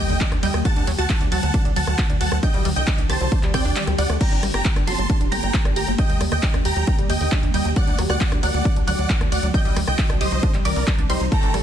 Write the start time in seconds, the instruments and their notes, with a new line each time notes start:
Already playing: ambient pad D#3 G3 A#3 G4
0.00 supersaw synth D#5 G5, synth pluck G6
0.10 analog synth bass D#2, synth arpeggio sound D3, open hi-hat
0.21 synth arpeggio sound D4, kick, clap, closed hi-hat, ride
0.32 analog synth bass D#2, synth arpeggio sound D4, cross-stick, closed hi-hat
0.43 analog synth bass D#2, synth arpeggio sound G3, supersaw synth D#5 G5, synth pluck G6, open hi-hat, ride
0.54 analog synth bass D#2, synth arpeggio sound F#3, cross-stick, closed hi-hat
0.65 ambient pad D3 F#3 A3 F#4, synth arpeggio sound F#3, supersaw synth F#5 A5, synth pluck A6, kick, closed hi-hat, ride
0.76 analog synth bass D2, synth arpeggio sound D4, closed hi-hat
0.87 analog synth bass D#2, synth arpeggio sound F#3, open hi-hat, ride
0.98 analog synth bass D2, synth arpeggio sound F#4, supersaw synth F#5 A5, synth pluck A6, closed hi-hat
1.10 synth arpeggio sound F#4, kick, clap, closed hi-hat, ride
1.21 analog synth bass D2, synth arpeggio sound D4, closed hi-hat
1.32 analog synth bass D2, synth arpeggio sound F#3, supersaw synth F#5 A5, synth pluck A6, open hi-hat, ride
1.43 analog synth bass D2, synth arpeggio sound F#3, closed hi-hat
1.54 synth arpeggio sound D4, kick, closed hi-hat, ride
1.65 analog synth bass C2, synth arpeggio sound D4, closed hi-hat
1.76 analog synth bass D2, synth arpeggio sound F#3, supersaw synth F#5 A5, synth pluck A6, open hi-hat, ride
1.87 analog synth bass D2, synth arpeggio sound F#3, cross-stick, closed hi-hat
1.98 synth arpeggio sound F#4, kick, clap, closed hi-hat, ride
2.10 analog synth bass D2, synth arpeggio sound D4, closed hi-hat
2.21 analog synth bass D2, synth arpeggio sound F#4, supersaw synth F#5 A5, synth pluck A6, open hi-hat, ride
2.32 analog synth bass D2, synth arpeggio sound F#3, cross-stick, closed hi-hat
2.43 ambient pad C4 G4, synth arpeggio sound D4, supersaw synth D#5 G5, synth pluck G6, kick, closed hi-hat, ride
2.54 analog synth bass C2, synth arpeggio sound G3, closed hi-hat
2.65 analog synth bass D2, synth arpeggio sound G3, open hi-hat, ride
2.76 analog synth bass C2, synth arpeggio sound D3, supersaw synth D#5 G5, synth pluck G6, closed hi-hat
2.87 synth arpeggio sound D4, kick, clap, closed hi-hat, ride
2.98 analog synth bass C2, synth arpeggio sound D4, closed hi-hat
3.09 analog synth bass C2, synth arpeggio sound G4, supersaw synth C5 A5, synth pluck A6, cross-stick, open hi-hat, ride
3.21 analog synth bass C2, synth arpeggio sound F#3, closed hi-hat
3.32 synth arpeggio sound D4, kick, closed hi-hat, ride
3.43 analog synth bass D2, synth arpeggio sound G3, clap, closed hi-hat
3.54 analog synth bass D2, synth arpeggio sound C4, supersaw synth D5 G5, synth pluck G6, kick, cross-stick, open hi-hat, ride
3.65 analog synth bass D2, synth arpeggio sound D4, open hi-hat
3.76 synth arpeggio sound G3, clap, closed hi-hat, ride
3.87 analog synth bass D2, synth arpeggio sound G3, cross-stick, closed hi-hat
3.98 analog synth bass D2, synth arpeggio sound G3, supersaw synth D5 F#5, synth pluck F#6, open hi-hat, ride
4.09 analog synth bass D2, synth arpeggio sound A3, cross-stick, closed hi-hat
4.21 ambient pad D3 A3 A#3 G4, synth arpeggio sound G3, supersaw synth G5 A#5, synth pluck A#6, kick, closed hi-hat, crash
4.32 analog synth bass G1, synth arpeggio sound D4, closed hi-hat
4.43 analog synth bass A1, synth arpeggio sound G3, cross-stick, open hi-hat, ride
4.54 analog synth bass G1, synth arpeggio sound G4, supersaw synth G5 A#5, synth pluck A#6, cross-stick, closed hi-hat
4.65 synth arpeggio sound G4, kick, clap, closed hi-hat
4.76 analog synth bass G1, synth arpeggio sound D4, cross-stick, closed hi-hat
4.87 analog synth bass G1, synth arpeggio sound F#3, supersaw synth A5 C6, synth pluck C7, open hi-hat, ride
4.98 analog synth bass G1, synth arpeggio sound F#3, closed hi-hat
5.10 synth arpeggio sound D4, kick, closed hi-hat
5.21 analog synth bass D1, synth arpeggio sound D4, closed hi-hat
5.31 analog synth bass G1, synth arpeggio sound G3, supersaw synth G5 A#5, synth pluck A#6, open hi-hat, ride
5.43 analog synth bass G1, synth arpeggio sound G3, closed hi-hat
5.54 synth arpeggio sound G4, kick, clap, closed hi-hat
5.65 analog synth bass G1, synth arpeggio sound D4, cross-stick, closed hi-hat
5.76 analog synth bass G1, synth arpeggio sound G4, supersaw synth G5 A#5, synth pluck A#6, open hi-hat, ride
5.87 analog synth bass G1, synth arpeggio sound F#3, closed hi-hat
5.98 ambient pad D#3 G3, synth arpeggio sound D4, supersaw synth D#5 G5, synth pluck G6, kick, closed hi-hat
6.09 analog synth bass D#2, synth arpeggio sound G3, closed hi-hat
6.21 analog synth bass D#2, synth arpeggio sound G3, cross-stick, open hi-hat, ride
6.32 analog synth bass D#2, synth arpeggio sound D3, supersaw synth D#5 G5, synth pluck G6, cross-stick, closed hi-hat
6.43 synth arpeggio sound D4, kick, clap, closed hi-hat
6.54 analog synth bass D#2, synth arpeggio sound D4, cross-stick, closed hi-hat
6.65 analog synth bass D#2, synth arpeggio sound G4, supersaw synth G5 A#5, synth pluck A#6, open hi-hat, ride
6.76 analog synth bass D#2, synth arpeggio sound F#3, closed hi-hat
6.87 synth arpeggio sound D4, kick, closed hi-hat
6.98 analog synth bass A#1, synth arpeggio sound G3, closed hi-hat
7.10 analog synth bass D#2, synth arpeggio sound G4, supersaw synth D#5 G5, synth pluck G6, open hi-hat, ride
7.21 analog synth bass D#2, synth arpeggio sound D3, open hi-hat
7.32 synth arpeggio sound D4, kick, clap, closed hi-hat
7.43 analog synth bass D#2, synth arpeggio sound D4, closed hi-hat
7.54 analog synth bass D#2, synth arpeggio sound G3, supersaw synth D#5 G5, synth pluck G6, open hi-hat, ride
7.65 analog synth bass D#2, synth arpeggio sound F#3, closed hi-hat
7.76 ambient pad D3 F#3 A3 F#4, synth arpeggio sound F#3, supersaw synth D5 F#5, synth pluck F#6, kick, closed hi-hat
7.87 analog synth bass D2, synth arpeggio sound D4, closed hi-hat
7.98 analog synth bass D#2, synth arpeggio sound F#3, cross-stick, open hi-hat, ride
8.09 analog synth bass D2, synth arpeggio sound F#4, supersaw synth D5 F#5, synth pluck F#6, cross-stick, closed hi-hat
8.21 synth arpeggio sound F#4, kick, clap, closed hi-hat
8.32 analog synth bass D2, synth arpeggio sound D4, cross-stick, closed hi-hat
8.43 analog synth bass D2, synth arpeggio sound F#3, supersaw synth D5 F#5, synth pluck F#6, open hi-hat, ride
8.54 analog synth bass D2, synth arpeggio sound F#3, closed hi-hat
8.65 synth arpeggio sound D4, kick, closed hi-hat
8.76 analog synth bass C2, synth arpeggio sound D4, closed hi-hat
8.87 analog synth bass D2, synth arpeggio sound F#3, supersaw synth D5 F#5, synth pluck F#6, open hi-hat, ride
8.99 analog synth bass D2, synth arpeggio sound F#3, closed hi-hat
9.10 synth arpeggio sound F#4, kick, clap, closed hi-hat
9.21 analog synth bass D2, synth arpeggio sound D4, cross-stick, closed hi-hat
9.32 analog synth bass D2, synth arpeggio sound F#4, supersaw synth D5 F#5, synth pluck F#6, open hi-hat, ride
9.43 analog synth bass D2, synth arpeggio sound F#3, closed hi-hat
9.54 ambient pad D#3 G3 C4, synth arpeggio sound D4, supersaw synth D#5 G5, synth pluck G6, kick, closed hi-hat
9.65 analog synth bass C2, synth arpeggio sound G3, closed hi-hat
9.76 analog synth bass D2, synth arpeggio sound G3, cross-stick, open hi-hat, ride
9.87 analog synth bass C2, synth arpeggio sound D3, supersaw synth D#5 G5, synth pluck G6, cross-stick, closed hi-hat
9.98 synth arpeggio sound D4, kick, clap, closed hi-hat
10.10 analog synth bass C2, synth arpeggio sound D4, cross-stick, closed hi-hat
10.21 analog synth bass C2, synth arpeggio sound G4, supersaw synth C5 D#5, synth pluck D#6, open hi-hat, ride
10.32 analog synth bass C2, synth arpeggio sound F#3, closed hi-hat
10.43 synth arpeggio sound D4, kick, closed hi-hat
10.54 analog synth bass A#1, synth arpeggio sound G3, clap, closed hi-hat
10.65 analog synth bass C2, synth arpeggio sound G4, supersaw synth A#4 D5, synth pluck D6, open hi-hat, ride
10.76 analog synth bass C2, synth arpeggio sound D3, open hi-hat
10.87 synth arpeggio sound D4, kick, clap, closed hi-hat
10.98 analog synth bass C2, synth arpeggio sound D4, closed hi-hat
11.09 analog synth bass C2, synth arpeggio sound G3, supersaw synth D#4 C5, synth pluck C6, open hi-hat, ride
11.21 analog synth bass C2, synth arpeggio sound F#3, closed hi-hat
11.32 synth arpeggio sound G3, violin section A3 A4, supersaw synth G5 A#5, synth pluck A#6, kick, closed hi-hat
11.43 analog synth bass G1, synth arpeggio sound D4, closed hi-hat
11.54 analog synth bass A1, synth arpeggio sound G3, cross-stick, open hi-hat, ride